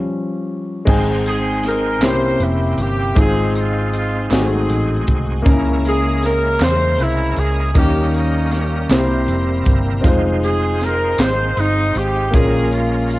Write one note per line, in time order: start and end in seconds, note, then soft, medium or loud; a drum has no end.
0.00 0.83 F3 medium
0.00 0.83 G3 soft
0.00 0.84 C#4 medium
0.85 2.02 G#1 loud
0.85 1.98 G#2 medium
0.85 2.01 G#3 medium
0.85 2.02 G#3 medium
0.85 2.00 C4 medium
0.85 2.02 C4 medium
0.85 2.02 D#4 medium
0.85 2.00 D#4 medium
0.85 2.03 G#4 medium
0.85 2.00 C5 medium
0.85 2.02 G5 medium
0.85 kick loud
0.85 crash loud
1.26 1.63 G#4 loud
1.26 closed hi-hat soft
1.63 2.03 A#4 loud
1.63 snare soft
1.63 closed hi-hat soft
2.00 2.37 C2 loud
2.00 3.13 C3 medium
2.00 3.16 A#3 medium
2.00 3.17 A#3 medium
2.00 3.14 C4 medium
2.00 3.17 C#4 medium
2.00 2.08 D#4 medium
2.00 3.17 E4 medium
2.00 2.42 E4 medium
2.00 3.17 G4 medium
2.00 3.18 G4 medium
2.00 3.15 C5 medium
2.00 snare loud
2.00 clap medium
2.00 closed hi-hat medium
2.05 3.20 E4 medium
2.05 2.80 G4 medium
2.05 2.42 C5 loud
2.40 2.75 F1 medium
2.40 2.80 E4 medium
2.40 closed hi-hat medium
2.78 3.13 G1 medium
2.78 3.18 G4 loud
2.78 closed hi-hat soft
3.15 4.27 G#1 medium
3.15 4.27 G#2 medium
3.15 4.31 G#3 medium
3.15 4.29 C4 medium
3.15 4.31 C4 medium
3.15 4.29 D#4 medium
3.15 4.30 D#4 medium
3.15 4.31 F4 medium
3.15 4.32 F4 medium
3.15 4.32 G#4 medium
3.15 4.31 C5 medium
3.15 kick loud
3.15 closed hi-hat medium
3.19 4.29 C4 medium
3.19 4.29 D#4 medium
3.19 3.54 G#4 loud
3.55 3.95 F4 medium
3.55 closed hi-hat soft
3.93 4.31 F4 medium
3.93 closed hi-hat soft
4.30 4.66 G#1 loud
4.30 5.42 G#2 medium
4.30 5.45 A3 medium
4.30 4.37 A3 medium
4.30 5.46 C4 medium
4.30 5.46 D#4 medium
4.30 5.44 D#4 medium
4.30 5.46 F#4 medium
4.30 5.47 F#4 medium
4.30 5.45 G#4 medium
4.30 5.46 G#4 medium
4.30 snare loud
4.30 clap medium
4.30 closed hi-hat medium
4.35 5.44 C4 medium
4.35 5.49 C4 medium
4.35 5.44 D#4 medium
4.35 5.15 G#4 medium
4.70 5.05 A1 medium
4.70 closed hi-hat medium
5.07 5.43 C2 medium
5.07 kick medium
5.07 closed hi-hat soft
5.42 6.57 C#2 loud
5.42 6.56 C#3 medium
5.42 7.69 A#3 medium
5.42 7.71 A#3 medium
5.42 7.70 C#4 medium
5.42 7.71 C#4 medium
5.42 5.52 D#4 medium
5.42 7.71 E4 medium
5.42 7.71 A#4 medium
5.42 kick loud
5.46 7.71 G#3 medium
5.46 7.72 G#4 medium
5.46 7.73 A#4 medium
5.46 closed hi-hat medium
5.52 7.74 E4 medium
5.85 6.22 G#4 loud
5.85 closed hi-hat medium
6.23 6.62 A#4 loud
6.23 snare soft
6.23 closed hi-hat soft
6.60 6.96 E2 loud
6.60 7.00 C5 loud
6.60 snare loud
6.60 clap medium
6.60 closed hi-hat medium
6.98 7.34 C2 medium
6.98 7.38 E4 loud
6.98 closed hi-hat medium
7.37 7.72 C#2 medium
7.37 7.75 G#4 medium
7.37 closed hi-hat medium
7.74 8.86 D#2 loud
7.74 8.86 D#3 medium
7.74 8.89 G3 medium
7.74 8.88 A#3 medium
7.74 8.89 A#3 medium
7.74 8.87 A#3 medium
7.74 8.89 C#4 medium
7.74 8.90 C#4 medium
7.74 8.87 C#4 medium
7.74 8.90 D#4 medium
7.74 8.91 D#4 medium
7.74 8.91 G4 medium
7.74 8.12 G4 loud
7.74 8.89 A#4 medium
7.74 8.91 A#4 medium
7.74 kick loud
7.74 closed hi-hat medium
8.14 8.52 D#4 medium
8.14 closed hi-hat soft
8.51 8.91 G4 loud
8.51 snare soft
8.51 closed hi-hat soft
8.89 9.25 C2 loud
8.89 10.02 C3 medium
8.89 10.05 G3 medium
8.89 10.04 A#3 medium
8.89 10.05 A#3 medium
8.89 10.02 C4 medium
8.89 10.00 C4 medium
8.89 10.05 E4 medium
8.89 10.02 E4 medium
8.89 10.06 G4 medium
8.89 10.02 G4 medium
8.89 8.96 A4 medium
8.89 9.77 C5 medium
8.89 snare loud
8.89 clap medium
8.89 closed hi-hat medium
8.93 10.06 A#4 medium
8.93 10.08 A#4 medium
9.28 9.63 F1 medium
9.28 closed hi-hat medium
9.65 10.01 G1 medium
9.65 kick medium
9.65 closed hi-hat soft
10.01 11.15 F1 loud
10.01 12.29 G#3 medium
10.01 12.28 C4 medium
10.01 12.29 C4 medium
10.01 12.29 D#4 medium
10.01 12.29 F4 medium
10.01 12.30 F4 medium
10.01 12.30 C5 medium
10.01 kick loud
10.01 closed hi-hat medium
10.06 12.31 G#3 medium
10.06 12.32 C5 medium
10.43 10.79 G#4 medium
10.43 closed hi-hat soft
10.81 11.20 A#4 loud
10.81 snare soft
10.81 closed hi-hat soft
11.18 11.54 G#1 loud
11.18 11.58 C5 loud
11.18 snare loud
11.18 clap medium
11.18 closed hi-hat medium
11.57 11.92 G1 medium
11.57 11.96 D#4 loud
11.57 closed hi-hat medium
11.95 12.31 G#1 medium
11.95 12.35 G4 medium
11.95 closed hi-hat soft
12.31 13.19 A#1 loud
12.31 13.19 A#2 medium
12.31 13.19 G#3 medium
12.31 13.19 A#3 medium
12.31 13.19 C#4 medium
12.31 13.19 F4 medium
12.31 12.73 F4 medium
12.31 12.40 G#4 medium
12.31 kick loud
12.31 closed hi-hat medium
12.35 13.19 C#4 medium
12.35 12.73 G#4 loud
12.35 13.19 G#4 medium
12.35 13.19 A#4 medium
12.41 13.19 A#4 medium
12.73 13.09 F4 medium
12.73 closed hi-hat medium
13.10 13.19 F4 medium
13.10 closed hi-hat soft